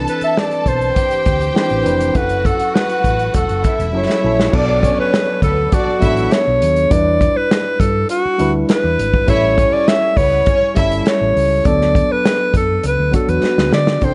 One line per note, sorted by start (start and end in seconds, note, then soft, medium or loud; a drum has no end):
0.00 0.41 E3 medium
0.00 0.42 C4 medium
0.00 0.42 D4 medium
0.00 0.93 A4 medium
0.00 0.43 B4 medium
0.00 0.93 A5 medium
0.08 0.22 B4 medium
0.08 closed hi-hat medium
0.21 0.41 E5 medium
0.21 muted fingered electric bass stroke soft
0.21 closed hi-hat soft
0.37 0.70 D5 medium
0.37 snare loud
0.51 closed hi-hat soft
0.66 0.90 B1 medium
0.66 1.57 C5 medium
0.66 kick medium
0.66 closed hi-hat medium
0.81 closed hi-hat soft
0.96 2.13 G4 medium
0.96 2.13 G5 medium
0.96 kick medium
0.96 closed hi-hat medium
1.11 muted fingered electric bass stroke soft
1.11 closed hi-hat soft
1.26 1.50 D2 medium
1.26 kick medium
1.26 closed hi-hat medium
1.41 closed hi-hat soft
1.54 1.76 E3 medium
1.54 1.77 C4 medium
1.54 1.77 D4 medium
1.54 1.78 B4 medium
1.54 2.18 C5 medium
1.54 snare medium
1.70 1.83 A1 medium
1.70 closed hi-hat soft
1.82 2.09 F1 medium
1.82 2.05 E3 medium
1.82 2.06 C4 medium
1.82 2.06 D4 medium
1.82 2.07 B4 medium
1.82 closed hi-hat medium
2.01 closed hi-hat medium
2.13 2.51 F#1 medium
2.13 2.99 F#3 medium
2.13 3.00 C#4 medium
2.13 3.00 E4 medium
2.13 3.62 F#4 medium
2.13 3.01 A4 medium
2.13 2.48 B4 medium
2.13 3.61 F#5 medium
2.13 kick medium
2.13 closed hi-hat medium
2.29 closed hi-hat medium
2.45 2.77 A4 medium
2.45 kick medium
2.45 closed hi-hat medium
2.60 muted fingered electric bass stroke soft
2.60 closed hi-hat soft
2.75 3.34 B4 medium
2.75 snare loud
2.89 closed hi-hat soft
3.04 3.28 A1 medium
3.04 kick medium
3.04 closed hi-hat medium
3.19 closed hi-hat soft
3.34 3.46 E1 medium
3.34 3.91 A4 medium
3.34 kick medium
3.34 closed hi-hat medium
3.49 3.61 F#1 medium
3.49 closed hi-hat soft
3.64 4.51 E4 medium
3.64 4.51 E5 medium
3.64 kick medium
3.64 closed hi-hat medium
3.79 3.94 E1 medium
3.79 closed hi-hat soft
3.92 4.06 F#1 medium
3.92 4.14 F#3 medium
3.92 4.15 C#4 medium
3.92 4.15 E4 medium
3.92 4.16 A4 medium
3.97 4.58 C#5 medium
4.10 snare medium
4.22 4.47 A#1 medium
4.22 4.44 F#3 medium
4.22 4.45 C#4 medium
4.22 4.45 E4 medium
4.22 4.46 A4 medium
4.40 snare medium
4.51 4.89 B1 loud
4.51 5.37 F#3 medium
4.51 5.38 B3 medium
4.51 4.77 D4 medium
4.51 5.38 D4 medium
4.51 5.39 A4 medium
4.51 4.78 D5 loud
4.51 kick loud
4.51 crash medium
4.56 4.99 D5 medium
4.82 5.39 C#4 medium
4.82 5.39 C#5 medium
4.82 kick medium
4.82 closed hi-hat medium
4.99 5.41 B4 medium
4.99 muted fingered electric bass stroke soft
5.14 snare loud
5.14 closed hi-hat medium
5.42 5.66 D2 medium
5.42 5.66 B3 medium
5.42 5.75 A4 medium
5.42 5.66 B4 medium
5.42 kick medium
5.42 closed hi-hat medium
5.71 5.96 D4 medium
5.71 6.34 F#4 medium
5.71 5.95 D5 medium
5.71 kick loud
5.71 closed hi-hat medium
5.88 muted fingered electric bass stroke soft
5.99 6.26 A1 medium
5.99 6.64 F#3 medium
5.99 6.65 B3 medium
5.99 6.65 D4 medium
5.99 6.25 E4 medium
5.99 6.66 A4 medium
5.99 6.25 E5 loud
5.99 kick loud
5.99 closed hi-hat medium
6.17 closed hi-hat soft
6.31 6.93 C#5 medium
6.31 snare loud
6.31 closed hi-hat medium
6.47 6.59 B1 medium
6.62 6.85 D#2 medium
6.62 closed hi-hat medium
6.76 closed hi-hat medium
6.89 7.26 E2 loud
6.89 7.74 G3 medium
6.89 7.75 D4 medium
6.89 7.75 E4 medium
6.89 7.76 B4 medium
6.89 7.38 D5 loud
6.89 kick loud
6.89 closed hi-hat medium
7.21 kick medium
7.21 closed hi-hat medium
7.36 7.82 B4 loud
7.36 muted fingered electric bass stroke soft
7.51 snare loud
7.51 closed hi-hat medium
7.80 8.03 G2 medium
7.80 8.10 A4 medium
7.80 kick loud
7.80 closed hi-hat medium
8.09 8.53 F#4 loud
8.09 closed hi-hat medium
8.25 muted fingered electric bass stroke soft
8.38 8.63 D2 medium
8.38 9.02 G3 medium
8.38 9.02 D4 medium
8.38 9.03 E4 medium
8.38 9.04 B4 medium
8.38 closed hi-hat medium
8.69 9.31 B4 medium
8.69 snare loud
8.69 closed hi-hat medium
8.84 8.96 E2 medium
8.99 9.22 G#1 medium
8.99 closed hi-hat medium
9.14 kick medium
9.26 9.64 A1 medium
9.26 10.11 G3 medium
9.26 10.12 C#4 medium
9.26 9.52 E4 loud
9.26 10.13 E4 medium
9.26 10.13 A4 medium
9.26 9.75 C#5 loud
9.26 9.52 E5 loud
9.26 kick loud
9.26 closed hi-hat medium
9.58 10.14 C#4 medium
9.58 10.14 C#5 medium
9.58 kick loud
9.58 closed hi-hat medium
9.73 9.90 D5 loud
9.73 muted fingered electric bass stroke medium
9.88 10.19 E5 loud
9.88 snare loud
9.88 closed hi-hat medium
10.17 10.41 C#2 medium
10.17 10.41 B3 medium
10.17 10.41 B4 medium
10.17 10.77 C#5 loud
10.17 kick medium
10.17 open hi-hat medium
10.46 10.70 C#4 medium
10.46 10.70 C#5 loud
10.46 kick loud
10.46 closed hi-hat loud
10.62 muted fingered electric bass stroke soft
10.74 11.00 G1 loud
10.74 11.39 G3 medium
10.74 11.39 C#4 medium
10.74 11.40 E4 medium
10.74 11.00 E4 medium
10.74 11.40 A4 medium
10.74 11.00 E5 loud
10.74 kick loud
10.74 closed hi-hat medium
10.92 closed hi-hat soft
11.06 11.68 C#5 medium
11.06 snare loud
11.06 closed hi-hat medium
11.21 11.33 A1 medium
11.36 11.59 C#2 medium
11.36 open hi-hat medium
11.64 12.01 D2 loud
11.64 12.49 F#3 medium
11.64 12.50 B3 medium
11.64 12.50 D4 medium
11.64 12.51 A4 medium
11.64 12.13 D5 loud
11.64 kick loud
11.64 closed hi-hat medium
11.81 snare soft
11.95 kick medium
11.95 closed hi-hat medium
12.10 12.55 B4 loud
12.10 muted fingered electric bass stroke soft
12.25 snare loud
12.25 closed hi-hat medium
12.54 12.78 F#2 medium
12.54 12.83 A4 medium
12.54 kick medium
12.54 closed hi-hat medium
12.83 12.95 C#2 loud
12.83 13.13 B4 medium
12.83 closed hi-hat loud
12.99 13.10 D2 medium
13.11 13.76 F#3 medium
13.11 13.76 B3 medium
13.11 13.77 D4 medium
13.11 13.77 F#4 medium
13.11 kick medium
13.11 closed hi-hat medium
13.16 13.32 A4 medium
13.28 13.40 E2 loud
13.28 13.73 B4 medium
13.28 closed hi-hat soft
13.44 snare medium
13.58 13.70 D2 medium
13.58 snare medium
13.72 13.96 D3 medium
13.72 14.06 D5 loud
13.72 snare loud
13.87 snare loud
14.00 14.14 C2 medium
14.00 14.14 E3 medium
14.00 14.14 C4 medium
14.00 14.14 D4 medium
14.00 14.14 G4 medium
14.00 14.14 A4 medium
14.00 14.14 G5 loud
14.00 kick medium
14.00 closed hi-hat medium
14.05 14.14 C5 medium